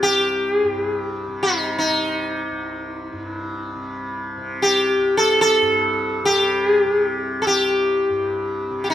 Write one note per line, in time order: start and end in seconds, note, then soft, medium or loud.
0.00 2.51 C2 soft
0.00 0.63 G2 medium
0.00 1.27 C3 soft
0.00 0.54 G4 medium
0.54 0.68 G#4 medium
0.64 3.12 G2 soft
0.68 0.83 G4 medium
0.83 0.97 G#4 medium
0.97 1.42 G4 medium
1.27 1.89 C3 medium
1.43 1.77 D#4 medium
1.79 3.76 D#4 medium
1.89 3.75 C3 soft
2.51 4.98 C2 medium
3.13 5.61 G2 medium
3.75 4.37 C3 soft
4.37 6.23 C3 medium
4.62 5.15 G4 medium
4.98 7.45 C2 medium
5.17 5.40 A4 medium
5.41 6.25 A4 medium
5.62 8.09 G2 medium
6.23 6.85 C3 medium
6.23 6.68 G4 medium
6.68 6.79 G#4 medium
6.79 7.41 G4 medium
6.85 8.70 C3 medium
7.42 7.47 A4 medium
7.46 8.94 C2 soft
7.46 8.83 G4 medium
8.10 8.94 G2 soft
8.70 8.94 C3 medium
8.84 8.90 G4 soft
8.90 8.94 D#4 medium